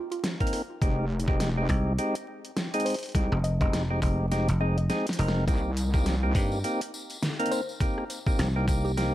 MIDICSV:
0, 0, Header, 1, 6, 480
1, 0, Start_track
1, 0, Key_signature, -3, "minor"
1, 0, Tempo, 582524
1, 674, Time_signature, 4, 2, 24, 8
1, 7535, End_track
2, 0, Start_track
2, 0, Title_t, "Synth pluck"
2, 0, Program_c, 0, 84
2, 94, Note_on_c, 0, 65, 77
2, 158, Note_off_c, 0, 65, 0
2, 2351, Note_on_c, 0, 72, 91
2, 2549, Note_off_c, 0, 72, 0
2, 2833, Note_on_c, 0, 75, 95
2, 2923, Note_off_c, 0, 75, 0
2, 2976, Note_on_c, 0, 75, 79
2, 3039, Note_off_c, 0, 75, 0
2, 3795, Note_on_c, 0, 75, 90
2, 3885, Note_off_c, 0, 75, 0
2, 3935, Note_on_c, 0, 75, 78
2, 3999, Note_off_c, 0, 75, 0
2, 6192, Note_on_c, 0, 72, 100
2, 6390, Note_off_c, 0, 72, 0
2, 7290, Note_on_c, 0, 67, 90
2, 7535, Note_off_c, 0, 67, 0
2, 7535, End_track
3, 0, Start_track
3, 0, Title_t, "Tonewheel organ"
3, 0, Program_c, 1, 16
3, 334, Note_on_c, 1, 58, 92
3, 334, Note_on_c, 1, 60, 87
3, 334, Note_on_c, 1, 63, 85
3, 334, Note_on_c, 1, 70, 108
3, 512, Note_off_c, 1, 58, 0
3, 512, Note_off_c, 1, 60, 0
3, 512, Note_off_c, 1, 63, 0
3, 512, Note_off_c, 1, 70, 0
3, 675, Note_on_c, 1, 60, 76
3, 675, Note_on_c, 1, 63, 77
3, 675, Note_on_c, 1, 67, 94
3, 676, Note_on_c, 1, 56, 80
3, 871, Note_off_c, 1, 56, 0
3, 871, Note_off_c, 1, 60, 0
3, 871, Note_off_c, 1, 63, 0
3, 871, Note_off_c, 1, 67, 0
3, 1055, Note_on_c, 1, 60, 82
3, 1056, Note_on_c, 1, 56, 85
3, 1056, Note_on_c, 1, 63, 81
3, 1056, Note_on_c, 1, 67, 102
3, 1233, Note_off_c, 1, 56, 0
3, 1233, Note_off_c, 1, 60, 0
3, 1233, Note_off_c, 1, 63, 0
3, 1233, Note_off_c, 1, 67, 0
3, 1298, Note_on_c, 1, 56, 85
3, 1298, Note_on_c, 1, 60, 80
3, 1298, Note_on_c, 1, 63, 80
3, 1298, Note_on_c, 1, 67, 97
3, 1381, Note_off_c, 1, 56, 0
3, 1381, Note_off_c, 1, 60, 0
3, 1381, Note_off_c, 1, 63, 0
3, 1381, Note_off_c, 1, 67, 0
3, 1397, Note_on_c, 1, 56, 82
3, 1397, Note_on_c, 1, 60, 73
3, 1397, Note_on_c, 1, 63, 73
3, 1397, Note_on_c, 1, 67, 93
3, 1591, Note_off_c, 1, 56, 0
3, 1591, Note_off_c, 1, 63, 0
3, 1591, Note_off_c, 1, 67, 0
3, 1592, Note_off_c, 1, 60, 0
3, 1636, Note_on_c, 1, 56, 103
3, 1637, Note_on_c, 1, 60, 94
3, 1637, Note_on_c, 1, 63, 91
3, 1637, Note_on_c, 1, 67, 113
3, 1772, Note_off_c, 1, 56, 0
3, 1772, Note_off_c, 1, 60, 0
3, 1772, Note_off_c, 1, 63, 0
3, 1772, Note_off_c, 1, 67, 0
3, 2257, Note_on_c, 1, 56, 96
3, 2258, Note_on_c, 1, 60, 83
3, 2258, Note_on_c, 1, 63, 85
3, 2258, Note_on_c, 1, 68, 103
3, 2434, Note_off_c, 1, 56, 0
3, 2434, Note_off_c, 1, 60, 0
3, 2434, Note_off_c, 1, 63, 0
3, 2434, Note_off_c, 1, 68, 0
3, 2597, Note_on_c, 1, 56, 82
3, 2597, Note_on_c, 1, 63, 78
3, 2597, Note_on_c, 1, 67, 88
3, 2598, Note_on_c, 1, 60, 76
3, 2792, Note_off_c, 1, 56, 0
3, 2792, Note_off_c, 1, 60, 0
3, 2792, Note_off_c, 1, 63, 0
3, 2792, Note_off_c, 1, 67, 0
3, 2978, Note_on_c, 1, 60, 80
3, 2978, Note_on_c, 1, 63, 80
3, 2979, Note_on_c, 1, 56, 91
3, 2979, Note_on_c, 1, 67, 103
3, 3154, Note_off_c, 1, 60, 0
3, 3154, Note_off_c, 1, 63, 0
3, 3155, Note_off_c, 1, 56, 0
3, 3155, Note_off_c, 1, 67, 0
3, 3217, Note_on_c, 1, 56, 89
3, 3217, Note_on_c, 1, 60, 81
3, 3217, Note_on_c, 1, 63, 82
3, 3217, Note_on_c, 1, 67, 94
3, 3300, Note_off_c, 1, 67, 0
3, 3301, Note_off_c, 1, 56, 0
3, 3301, Note_off_c, 1, 60, 0
3, 3301, Note_off_c, 1, 63, 0
3, 3317, Note_on_c, 1, 56, 80
3, 3317, Note_on_c, 1, 63, 73
3, 3317, Note_on_c, 1, 67, 91
3, 3318, Note_on_c, 1, 60, 77
3, 3511, Note_off_c, 1, 56, 0
3, 3511, Note_off_c, 1, 67, 0
3, 3512, Note_off_c, 1, 60, 0
3, 3512, Note_off_c, 1, 63, 0
3, 3557, Note_on_c, 1, 56, 99
3, 3557, Note_on_c, 1, 60, 94
3, 3557, Note_on_c, 1, 63, 95
3, 3557, Note_on_c, 1, 67, 107
3, 3692, Note_off_c, 1, 56, 0
3, 3692, Note_off_c, 1, 60, 0
3, 3692, Note_off_c, 1, 63, 0
3, 3692, Note_off_c, 1, 67, 0
3, 3796, Note_on_c, 1, 56, 83
3, 3796, Note_on_c, 1, 60, 74
3, 3797, Note_on_c, 1, 63, 75
3, 3797, Note_on_c, 1, 68, 91
3, 3932, Note_off_c, 1, 56, 0
3, 3932, Note_off_c, 1, 60, 0
3, 3932, Note_off_c, 1, 63, 0
3, 3932, Note_off_c, 1, 68, 0
3, 4035, Note_on_c, 1, 56, 90
3, 4035, Note_on_c, 1, 60, 82
3, 4035, Note_on_c, 1, 63, 83
3, 4036, Note_on_c, 1, 68, 100
3, 4171, Note_off_c, 1, 56, 0
3, 4171, Note_off_c, 1, 60, 0
3, 4171, Note_off_c, 1, 63, 0
3, 4172, Note_off_c, 1, 68, 0
3, 4275, Note_on_c, 1, 56, 76
3, 4275, Note_on_c, 1, 60, 69
3, 4275, Note_on_c, 1, 63, 73
3, 4275, Note_on_c, 1, 70, 84
3, 4490, Note_off_c, 1, 60, 0
3, 4491, Note_off_c, 1, 56, 0
3, 4491, Note_off_c, 1, 63, 0
3, 4491, Note_off_c, 1, 70, 0
3, 4514, Note_on_c, 1, 58, 85
3, 4515, Note_on_c, 1, 60, 75
3, 4515, Note_on_c, 1, 63, 73
3, 4515, Note_on_c, 1, 67, 91
3, 4710, Note_off_c, 1, 58, 0
3, 4710, Note_off_c, 1, 60, 0
3, 4710, Note_off_c, 1, 63, 0
3, 4711, Note_off_c, 1, 67, 0
3, 4894, Note_on_c, 1, 60, 82
3, 4894, Note_on_c, 1, 63, 81
3, 4895, Note_on_c, 1, 58, 87
3, 4895, Note_on_c, 1, 67, 100
3, 5072, Note_off_c, 1, 60, 0
3, 5072, Note_off_c, 1, 63, 0
3, 5073, Note_off_c, 1, 58, 0
3, 5073, Note_off_c, 1, 67, 0
3, 5135, Note_on_c, 1, 58, 89
3, 5135, Note_on_c, 1, 60, 77
3, 5135, Note_on_c, 1, 63, 80
3, 5135, Note_on_c, 1, 67, 95
3, 5219, Note_off_c, 1, 58, 0
3, 5219, Note_off_c, 1, 67, 0
3, 5220, Note_off_c, 1, 60, 0
3, 5220, Note_off_c, 1, 63, 0
3, 5236, Note_on_c, 1, 58, 82
3, 5236, Note_on_c, 1, 60, 73
3, 5236, Note_on_c, 1, 63, 74
3, 5236, Note_on_c, 1, 67, 91
3, 5431, Note_off_c, 1, 58, 0
3, 5431, Note_off_c, 1, 60, 0
3, 5431, Note_off_c, 1, 63, 0
3, 5431, Note_off_c, 1, 67, 0
3, 5474, Note_on_c, 1, 58, 101
3, 5474, Note_on_c, 1, 60, 94
3, 5474, Note_on_c, 1, 63, 90
3, 5474, Note_on_c, 1, 67, 108
3, 5611, Note_off_c, 1, 58, 0
3, 5611, Note_off_c, 1, 60, 0
3, 5611, Note_off_c, 1, 63, 0
3, 5611, Note_off_c, 1, 67, 0
3, 6093, Note_on_c, 1, 58, 94
3, 6093, Note_on_c, 1, 60, 86
3, 6093, Note_on_c, 1, 63, 88
3, 6093, Note_on_c, 1, 70, 106
3, 6272, Note_off_c, 1, 58, 0
3, 6272, Note_off_c, 1, 60, 0
3, 6272, Note_off_c, 1, 63, 0
3, 6272, Note_off_c, 1, 70, 0
3, 6434, Note_on_c, 1, 58, 82
3, 6434, Note_on_c, 1, 60, 74
3, 6434, Note_on_c, 1, 63, 73
3, 6435, Note_on_c, 1, 67, 91
3, 6630, Note_off_c, 1, 58, 0
3, 6630, Note_off_c, 1, 60, 0
3, 6630, Note_off_c, 1, 63, 0
3, 6630, Note_off_c, 1, 67, 0
3, 6813, Note_on_c, 1, 58, 89
3, 6813, Note_on_c, 1, 60, 83
3, 6813, Note_on_c, 1, 63, 80
3, 6813, Note_on_c, 1, 67, 101
3, 6992, Note_off_c, 1, 58, 0
3, 6992, Note_off_c, 1, 60, 0
3, 6992, Note_off_c, 1, 63, 0
3, 6992, Note_off_c, 1, 67, 0
3, 7054, Note_on_c, 1, 58, 91
3, 7054, Note_on_c, 1, 60, 84
3, 7054, Note_on_c, 1, 63, 79
3, 7054, Note_on_c, 1, 67, 96
3, 7139, Note_off_c, 1, 58, 0
3, 7139, Note_off_c, 1, 60, 0
3, 7139, Note_off_c, 1, 63, 0
3, 7139, Note_off_c, 1, 67, 0
3, 7155, Note_on_c, 1, 58, 82
3, 7155, Note_on_c, 1, 60, 77
3, 7155, Note_on_c, 1, 63, 72
3, 7155, Note_on_c, 1, 67, 94
3, 7350, Note_off_c, 1, 60, 0
3, 7350, Note_off_c, 1, 63, 0
3, 7350, Note_off_c, 1, 67, 0
3, 7351, Note_off_c, 1, 58, 0
3, 7394, Note_on_c, 1, 58, 102
3, 7394, Note_on_c, 1, 60, 94
3, 7394, Note_on_c, 1, 63, 97
3, 7394, Note_on_c, 1, 67, 108
3, 7530, Note_off_c, 1, 58, 0
3, 7530, Note_off_c, 1, 60, 0
3, 7530, Note_off_c, 1, 63, 0
3, 7531, Note_off_c, 1, 67, 0
3, 7535, End_track
4, 0, Start_track
4, 0, Title_t, "Wobble bass"
4, 0, Program_c, 2, 39
4, 671, Note_on_c, 2, 29, 100
4, 1377, Note_off_c, 2, 29, 0
4, 2592, Note_on_c, 2, 36, 96
4, 2711, Note_off_c, 2, 36, 0
4, 4511, Note_on_c, 2, 36, 99
4, 5217, Note_off_c, 2, 36, 0
4, 7535, End_track
5, 0, Start_track
5, 0, Title_t, "Slap bass"
5, 0, Program_c, 3, 36
5, 1394, Note_on_c, 3, 36, 96
5, 1618, Note_off_c, 3, 36, 0
5, 2735, Note_on_c, 3, 29, 98
5, 2952, Note_off_c, 3, 29, 0
5, 2973, Note_on_c, 3, 29, 98
5, 3297, Note_off_c, 3, 29, 0
5, 3313, Note_on_c, 3, 29, 95
5, 3671, Note_off_c, 3, 29, 0
5, 3696, Note_on_c, 3, 29, 97
5, 4019, Note_off_c, 3, 29, 0
5, 4276, Note_on_c, 3, 29, 101
5, 4499, Note_off_c, 3, 29, 0
5, 5232, Note_on_c, 3, 43, 90
5, 5457, Note_off_c, 3, 43, 0
5, 6914, Note_on_c, 3, 36, 102
5, 7535, Note_off_c, 3, 36, 0
5, 7535, End_track
6, 0, Start_track
6, 0, Title_t, "Drums"
6, 96, Note_on_c, 9, 42, 37
6, 179, Note_off_c, 9, 42, 0
6, 195, Note_on_c, 9, 38, 118
6, 195, Note_on_c, 9, 42, 81
6, 277, Note_off_c, 9, 38, 0
6, 277, Note_off_c, 9, 42, 0
6, 333, Note_on_c, 9, 36, 62
6, 335, Note_on_c, 9, 42, 47
6, 386, Note_off_c, 9, 42, 0
6, 386, Note_on_c, 9, 42, 59
6, 416, Note_off_c, 9, 36, 0
6, 436, Note_on_c, 9, 37, 37
6, 436, Note_on_c, 9, 46, 62
6, 468, Note_off_c, 9, 42, 0
6, 518, Note_off_c, 9, 37, 0
6, 518, Note_off_c, 9, 46, 0
6, 673, Note_on_c, 9, 36, 117
6, 675, Note_on_c, 9, 42, 78
6, 755, Note_off_c, 9, 36, 0
6, 758, Note_off_c, 9, 42, 0
6, 986, Note_on_c, 9, 42, 64
6, 1053, Note_on_c, 9, 36, 102
6, 1068, Note_off_c, 9, 42, 0
6, 1135, Note_off_c, 9, 36, 0
6, 1155, Note_on_c, 9, 38, 122
6, 1155, Note_on_c, 9, 42, 83
6, 1237, Note_off_c, 9, 38, 0
6, 1237, Note_off_c, 9, 42, 0
6, 1393, Note_on_c, 9, 36, 99
6, 1395, Note_on_c, 9, 46, 73
6, 1475, Note_off_c, 9, 36, 0
6, 1477, Note_off_c, 9, 46, 0
6, 1636, Note_on_c, 9, 42, 78
6, 1718, Note_off_c, 9, 42, 0
6, 1774, Note_on_c, 9, 42, 69
6, 1856, Note_off_c, 9, 42, 0
6, 2016, Note_on_c, 9, 42, 39
6, 2098, Note_off_c, 9, 42, 0
6, 2114, Note_on_c, 9, 38, 114
6, 2114, Note_on_c, 9, 42, 80
6, 2197, Note_off_c, 9, 38, 0
6, 2197, Note_off_c, 9, 42, 0
6, 2256, Note_on_c, 9, 42, 48
6, 2306, Note_off_c, 9, 42, 0
6, 2306, Note_on_c, 9, 42, 64
6, 2356, Note_on_c, 9, 46, 62
6, 2388, Note_off_c, 9, 42, 0
6, 2391, Note_off_c, 9, 46, 0
6, 2391, Note_on_c, 9, 46, 48
6, 2426, Note_off_c, 9, 46, 0
6, 2426, Note_on_c, 9, 46, 41
6, 2460, Note_off_c, 9, 46, 0
6, 2460, Note_on_c, 9, 46, 33
6, 2495, Note_off_c, 9, 46, 0
6, 2495, Note_on_c, 9, 46, 28
6, 2519, Note_off_c, 9, 46, 0
6, 2519, Note_on_c, 9, 46, 24
6, 2546, Note_off_c, 9, 46, 0
6, 2546, Note_on_c, 9, 46, 19
6, 2570, Note_off_c, 9, 46, 0
6, 2570, Note_on_c, 9, 46, 15
6, 2593, Note_on_c, 9, 36, 112
6, 2596, Note_on_c, 9, 42, 82
6, 2653, Note_off_c, 9, 46, 0
6, 2675, Note_off_c, 9, 36, 0
6, 2678, Note_off_c, 9, 42, 0
6, 2737, Note_on_c, 9, 37, 56
6, 2819, Note_off_c, 9, 37, 0
6, 2836, Note_on_c, 9, 42, 66
6, 2918, Note_off_c, 9, 42, 0
6, 2973, Note_on_c, 9, 36, 109
6, 2977, Note_on_c, 9, 42, 38
6, 3055, Note_off_c, 9, 36, 0
6, 3060, Note_off_c, 9, 42, 0
6, 3077, Note_on_c, 9, 38, 123
6, 3077, Note_on_c, 9, 42, 84
6, 3159, Note_off_c, 9, 38, 0
6, 3159, Note_off_c, 9, 42, 0
6, 3313, Note_on_c, 9, 36, 105
6, 3318, Note_on_c, 9, 37, 43
6, 3318, Note_on_c, 9, 46, 68
6, 3395, Note_off_c, 9, 36, 0
6, 3400, Note_off_c, 9, 37, 0
6, 3400, Note_off_c, 9, 46, 0
6, 3556, Note_on_c, 9, 38, 60
6, 3556, Note_on_c, 9, 42, 85
6, 3639, Note_off_c, 9, 38, 0
6, 3639, Note_off_c, 9, 42, 0
6, 3696, Note_on_c, 9, 42, 71
6, 3779, Note_off_c, 9, 42, 0
6, 3936, Note_on_c, 9, 42, 37
6, 4019, Note_off_c, 9, 42, 0
6, 4035, Note_on_c, 9, 38, 70
6, 4035, Note_on_c, 9, 42, 81
6, 4117, Note_off_c, 9, 38, 0
6, 4117, Note_off_c, 9, 42, 0
6, 4175, Note_on_c, 9, 42, 49
6, 4195, Note_on_c, 9, 38, 80
6, 4226, Note_off_c, 9, 42, 0
6, 4226, Note_on_c, 9, 42, 68
6, 4275, Note_on_c, 9, 46, 60
6, 4278, Note_off_c, 9, 38, 0
6, 4309, Note_off_c, 9, 42, 0
6, 4354, Note_on_c, 9, 38, 94
6, 4358, Note_off_c, 9, 46, 0
6, 4436, Note_off_c, 9, 38, 0
6, 4512, Note_on_c, 9, 36, 121
6, 4515, Note_on_c, 9, 42, 88
6, 4518, Note_on_c, 9, 54, 39
6, 4595, Note_off_c, 9, 36, 0
6, 4597, Note_off_c, 9, 42, 0
6, 4601, Note_off_c, 9, 54, 0
6, 4753, Note_on_c, 9, 42, 66
6, 4754, Note_on_c, 9, 54, 89
6, 4835, Note_off_c, 9, 42, 0
6, 4837, Note_off_c, 9, 54, 0
6, 4893, Note_on_c, 9, 36, 114
6, 4897, Note_on_c, 9, 54, 57
6, 4975, Note_off_c, 9, 36, 0
6, 4979, Note_off_c, 9, 54, 0
6, 4992, Note_on_c, 9, 54, 44
6, 4994, Note_on_c, 9, 38, 124
6, 4994, Note_on_c, 9, 42, 87
6, 5074, Note_off_c, 9, 54, 0
6, 5076, Note_off_c, 9, 38, 0
6, 5076, Note_off_c, 9, 42, 0
6, 5232, Note_on_c, 9, 36, 106
6, 5233, Note_on_c, 9, 46, 68
6, 5234, Note_on_c, 9, 54, 95
6, 5314, Note_off_c, 9, 36, 0
6, 5316, Note_off_c, 9, 46, 0
6, 5316, Note_off_c, 9, 54, 0
6, 5369, Note_on_c, 9, 54, 51
6, 5451, Note_off_c, 9, 54, 0
6, 5473, Note_on_c, 9, 42, 89
6, 5477, Note_on_c, 9, 54, 42
6, 5556, Note_off_c, 9, 42, 0
6, 5560, Note_off_c, 9, 54, 0
6, 5614, Note_on_c, 9, 42, 72
6, 5697, Note_off_c, 9, 42, 0
6, 5718, Note_on_c, 9, 54, 91
6, 5800, Note_off_c, 9, 54, 0
6, 5848, Note_on_c, 9, 54, 55
6, 5854, Note_on_c, 9, 42, 40
6, 5930, Note_off_c, 9, 54, 0
6, 5936, Note_off_c, 9, 42, 0
6, 5954, Note_on_c, 9, 38, 116
6, 5954, Note_on_c, 9, 42, 85
6, 5954, Note_on_c, 9, 54, 44
6, 6036, Note_off_c, 9, 38, 0
6, 6036, Note_off_c, 9, 42, 0
6, 6036, Note_off_c, 9, 54, 0
6, 6094, Note_on_c, 9, 42, 52
6, 6144, Note_off_c, 9, 42, 0
6, 6144, Note_on_c, 9, 42, 70
6, 6193, Note_on_c, 9, 46, 59
6, 6196, Note_on_c, 9, 54, 88
6, 6227, Note_off_c, 9, 42, 0
6, 6276, Note_off_c, 9, 46, 0
6, 6278, Note_off_c, 9, 54, 0
6, 6336, Note_on_c, 9, 54, 47
6, 6418, Note_off_c, 9, 54, 0
6, 6431, Note_on_c, 9, 36, 123
6, 6433, Note_on_c, 9, 42, 86
6, 6434, Note_on_c, 9, 54, 39
6, 6513, Note_off_c, 9, 36, 0
6, 6516, Note_off_c, 9, 42, 0
6, 6517, Note_off_c, 9, 54, 0
6, 6574, Note_on_c, 9, 37, 56
6, 6656, Note_off_c, 9, 37, 0
6, 6673, Note_on_c, 9, 54, 99
6, 6674, Note_on_c, 9, 42, 67
6, 6755, Note_off_c, 9, 54, 0
6, 6756, Note_off_c, 9, 42, 0
6, 6810, Note_on_c, 9, 36, 115
6, 6817, Note_on_c, 9, 54, 61
6, 6893, Note_off_c, 9, 36, 0
6, 6899, Note_off_c, 9, 54, 0
6, 6910, Note_on_c, 9, 54, 43
6, 6914, Note_on_c, 9, 38, 127
6, 6914, Note_on_c, 9, 42, 89
6, 6993, Note_off_c, 9, 54, 0
6, 6997, Note_off_c, 9, 38, 0
6, 6997, Note_off_c, 9, 42, 0
6, 7150, Note_on_c, 9, 36, 115
6, 7154, Note_on_c, 9, 37, 44
6, 7154, Note_on_c, 9, 46, 64
6, 7156, Note_on_c, 9, 54, 108
6, 7232, Note_off_c, 9, 36, 0
6, 7237, Note_off_c, 9, 37, 0
6, 7237, Note_off_c, 9, 46, 0
6, 7239, Note_off_c, 9, 54, 0
6, 7296, Note_on_c, 9, 54, 54
6, 7378, Note_off_c, 9, 54, 0
6, 7395, Note_on_c, 9, 38, 65
6, 7395, Note_on_c, 9, 42, 86
6, 7398, Note_on_c, 9, 54, 39
6, 7477, Note_off_c, 9, 38, 0
6, 7477, Note_off_c, 9, 42, 0
6, 7481, Note_off_c, 9, 54, 0
6, 7535, End_track
0, 0, End_of_file